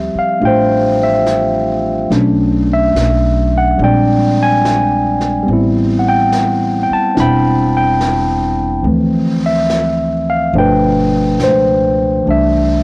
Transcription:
Already playing: upright bass D2, tine electric piano F3 G3 C4 G4 E5
0.15 tine electric piano F5, muted upright bass stroke
0.40 upright bass A1, tine electric piano A3 D4 F4, brush sweep
0.45 tine electric piano C5 G5
1.03 tine electric piano E5
1.26 snare, hi-hat pedal
2.10 upright bass B1, tine electric piano F#3 A3 C#4 D4, brush sweep, snare
2.73 tine electric piano E5
2.95 upright bass B1, snare, hi-hat pedal
3.58 tine electric piano F#5
3.78 upright bass A#1, tine electric piano G3 G#3, brush sweep
3.82 tine electric piano C4 D4 D5 G5
4.43 tine electric piano G#5
4.65 snare, hi-hat pedal
5.21 snare
5.42 tine electric piano G3 B3
5.48 upright bass A1, tine electric piano C4, brush sweep
5.53 tine electric piano E4
5.99 tine electric piano F#5
6.08 tine electric piano G5
6.32 snare, hi-hat pedal
6.83 tine electric piano G5
6.90 tine electric piano A5, muted upright bass stroke
7.15 upright bass E1, tine electric piano C4 D4 E4, brush sweep, snare
7.20 tine electric piano G5 B5
7.77 tine electric piano G5
8.01 snare, hi-hat pedal
8.82 upright bass D2, tine electric piano F3 A3 C4, brush sweep
8.88 tine electric piano E3
9.46 tine electric piano E5
9.70 snare, hi-hat pedal
10.30 tine electric piano F5
10.53 upright bass G1, tine electric piano B2 F3 A3 D4, brush sweep
10.58 tine electric piano B4 G5
11.40 upright bass C#2, tine electric piano C5, snare, hi-hat pedal
12.24 upright bass C2, tine electric piano E3 G3 A3, brush sweep
12.29 tine electric piano D4 E5

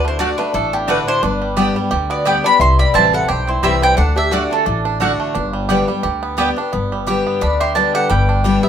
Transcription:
Already playing: upright bass D2, steel-string acoustic guitar D3, five-string banjo D4
0.05 five-string banjo A3, resonator guitar played with a steel bar E4, mandolin C5
0.19 steel-string acoustic guitar D3 A3 D4 F#4, mandolin A3 F#4 D5 F#5, five-string banjo D4, resonator guitar played with a steel bar F#4
0.38 five-string banjo A3, resonator guitar played with a steel bar D4, steel-string acoustic guitar D4 F#4, mandolin B4
0.53 upright bass A1, steel-string acoustic guitar A2, resonator guitar played with a steel bar D4, five-string banjo D4, mandolin A4
0.73 resonator guitar played with a steel bar B3, five-string banjo D4, mandolin G4
0.87 steel-string acoustic guitar D3 A3 D4 F#4, mandolin A3 F#4 B4 D5 F#5, resonator guitar played with a steel bar D4, five-string banjo D4
1.07 five-string banjo D4, resonator guitar played with a steel bar E4, mandolin C5
1.23 upright bass G1, steel-string acoustic guitar G2, five-string banjo D4, resonator guitar played with a steel bar D4, mandolin B4
1.42 five-string banjo G3
1.57 steel-string acoustic guitar D3 G3 B3 G4, mandolin B3 G4 D5 G5, five-string banjo G4
1.76 five-string banjo G3, steel-string acoustic guitar B3 G4
1.91 upright bass D2, steel-string acoustic guitar D3, five-string banjo G4
2.10 five-string banjo B3, resonator guitar played with a steel bar F#4, mandolin D5
2.25 steel-string acoustic guitar D3 G3 B3 G4, mandolin B3 G4 D5 G5, five-string banjo G4, resonator guitar played with a steel bar B4
2.44 steel-string acoustic guitar B3 G4, five-string banjo D4, resonator guitar played with a steel bar D5, mandolin B5
2.59 upright bass C2, steel-string acoustic guitar C3, five-string banjo E4, resonator guitar played with a steel bar E5, mandolin C6
2.79 five-string banjo G3, resonator guitar played with a steel bar D5, mandolin B5
2.94 upright bass A1, steel-string acoustic guitar E3 G3 C4 E4, mandolin C4 E4 C5 G5 A5, five-string banjo C4, resonator guitar played with a steel bar C5
3.13 steel-string acoustic guitar C4 E4, five-string banjo E4, resonator guitar played with a steel bar A4, mandolin F#5
3.28 upright bass B1, steel-string acoustic guitar G2, five-string banjo G4, resonator guitar played with a steel bar C5, mandolin G5
3.47 five-string banjo C4, resonator guitar played with a steel bar E4, mandolin C5
3.63 upright bass C2, steel-string acoustic guitar E3 G3 C4 E4, five-string banjo G3, mandolin C4 E4 C5 E5 G5, resonator guitar played with a steel bar G4
3.82 five-string banjo C4, resonator guitar played with a steel bar B4, mandolin G5
3.97 upright bass D2, steel-string acoustic guitar D3, five-string banjo D4, resonator guitar played with a steel bar A4, mandolin F#5
4.16 five-string banjo D4, resonator guitar played with a steel bar G4, mandolin E5
4.31 steel-string acoustic guitar D3 A3 D4 F#4, mandolin A3 F#4 D5 F#5, five-string banjo D4, resonator guitar played with a steel bar F#4
4.51 resonator guitar played with a steel bar D4, five-string banjo D4, mandolin A4
4.66 upright bass A1, steel-string acoustic guitar A2, five-string banjo D4
4.85 five-string banjo D4
5.00 steel-string acoustic guitar D3 A3 D4 F#4, mandolin A3 F#4 D5 F#5, five-string banjo D4
5.20 five-string banjo A3
5.35 upright bass G1, steel-string acoustic guitar G2, five-string banjo D4
5.53 five-string banjo G3
5.69 steel-string acoustic guitar D3 G3 B3 G4, mandolin B3 G4 D5 G5, five-string banjo G4
5.88 five-string banjo G3, steel-string acoustic guitar B3 G4
6.03 upright bass D2, steel-string acoustic guitar D3, five-string banjo G4
6.23 five-string banjo B3
6.37 steel-string acoustic guitar D3 G3 B3 G4, mandolin B3 G4 D5 G5, five-string banjo G4
6.56 steel-string acoustic guitar B3 G4, five-string banjo D4
6.73 upright bass G1, steel-string acoustic guitar G2, five-string banjo B3
6.92 five-string banjo G3
7.07 steel-string acoustic guitar D3 G3 B3 G4, five-string banjo G4
7.27 five-string banjo B3
7.41 upright bass D2, steel-string acoustic guitar D3, five-string banjo D4, resonator guitar played with a steel bar D5, mandolin B5
7.60 five-string banjo G4, resonator guitar played with a steel bar E5, mandolin C6
7.75 steel-string acoustic guitar D3 G3 B3 G4, five-string banjo D4, resonator guitar played with a steel bar D5, mandolin A5
7.95 five-string banjo G4, resonator guitar played with a steel bar A4, mandolin F#5
8.10 upright bass G1, steel-string acoustic guitar G2, five-string banjo G3, resonator guitar played with a steel bar B4, mandolin G5
8.29 five-string banjo D4
8.44 steel-string acoustic guitar D3 G3 B3 G4, five-string banjo G3
8.63 five-string banjo B3, steel-string acoustic guitar B3 G4, resonator guitar played with a steel bar G4, mandolin E5

